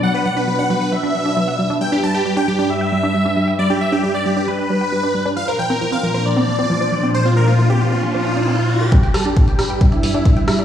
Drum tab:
HH |----------------|----------------|----------------|----------------|
SD |----------------|----------------|----------------|----------------|
BD |----------------|----------------|----------------|----------------|

HH |----------------|xxoxxxoxxxoxxxox|
SD |----------------|--r---r-------r-|
BD |----------------|o---o---o---o---|